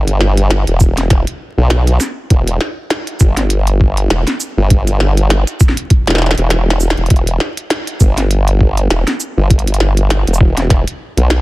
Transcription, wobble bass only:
Already playing: G1
0.68 E1
1.58 B1
2.31 E1
3.21 G1
4.11 E1
4.57 G1
6.08 E1
6.38 E1
6.98 E1
7.11 E1
8.01 G1
8.90 E1
9.37 G1
10.27 E1
11.17 B1

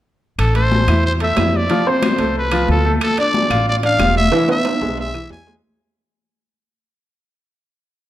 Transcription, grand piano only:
0.54 A3 A4
0.88 E4 E5
1.21 A3 A4
1.37 E4 E5
1.70 F3 F4
1.87 C4 C5
2.19 A3 A4
2.52 F3 F4
2.85 A3 A4
3.18 D4 D5
3.50 F4 F5
3.83 D4 D5
3.99 F4 F5
4.32 E3 E4
4.49 B3 B4
4.82 G#3 G#4
5.14 E3 E4
5.47 G#3 G#4

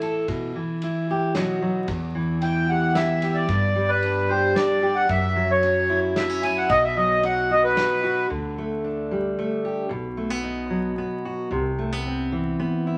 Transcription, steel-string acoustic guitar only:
Already playing: A2 E3 E4
0.03 A4
0.28 B2
0.55 E3
0.83 E4
1.11 G4
1.35 B2 F#3 B3 D#4 F#4
1.62 F#3
1.88 E2
2.15 E3
2.43 E4
2.70 G4
2.96 E4
3.23 G4
3.49 G2
3.75 G3
4.04 D4
4.30 G4
4.56 D4
4.83 G4
5.09 F#2
5.36 F#3
5.63 C#4
5.90 E4
6.16 B3
6.29 C#4
6.44 E4
6.69 B2
6.97 F#3
7.24 D#4
7.51 F#4
7.77 D#4
8.04 F#4
8.30 D3
8.58 A3
8.84 D4
9.11 G3
9.39 A3
9.65 G4
9.89 B2
10.17 A3
10.30 B3
10.44 D#4
10.70 F#3
10.98 B3
11.25 F#4
11.52 C3
11.78 A3
11.92 B3
12.06 C4
12.32 E3
12.60 B3
12.87 E4

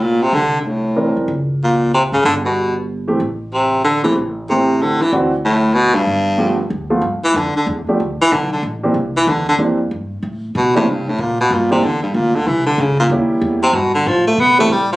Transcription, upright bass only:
Already playing: C2
0.33 C2
1.17 C2
1.28 C#2
2.12 G#1
2.25 G1
3.20 A1
4.15 A1
5.00 muted upright bass stroke
5.12 D2
5.96 muted upright bass stroke
6.07 G1
6.70 D2
7.01 G2
7.23 muted upright bass stroke
7.34 F2
7.55 muted upright bass stroke
7.67 E2
7.87 muted upright bass stroke
8.00 D2
8.21 muted upright bass stroke
8.32 B1
8.63 A1
8.94 C2
9.27 E2
9.59 F2
9.91 G2
10.23 A2
10.55 B2
10.86 C3
11.18 A#2
11.50 G2
11.83 E2
12.14 D2
12.47 C2
12.78 C#2
13.09 D#2
13.41 E2
13.73 G2
14.06 A2
14.38 B2
14.69 A2

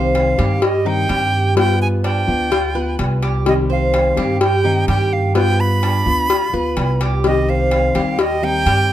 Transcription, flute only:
Already playing: F5
0.64 D#5
0.87 G5
1.58 G5
1.82 G#5
2.05 G5
3.48 D#5
3.72 F5
4.42 G5
4.89 G5
5.13 F5
5.36 G5
5.60 B5
7.26 D#5
7.50 F5
8.20 D#5
8.44 G5

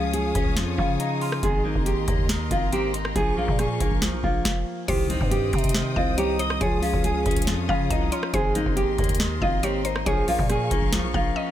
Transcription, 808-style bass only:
Already playing: C#2
0.35 C#2
0.57 F2
0.78 C#3
1.43 G#1
1.75 G#1
2.08 D#2
2.51 G#1
3.16 A#1
3.48 A#2
3.81 A#1
4.02 C#2
4.13 A#1
4.24 A#1
4.88 C2
5.21 G2
5.53 C3
5.96 C2
6.61 C#2
6.93 C#2
7.26 C#2
7.47 F2
7.69 C#3
7.90 C2
8.34 G#1
8.66 G#1
8.99 D#2
9.42 G#1
10.06 A#1
10.39 A#2
10.71 A#1
10.93 C#2
11.03 A#1
11.14 A#1

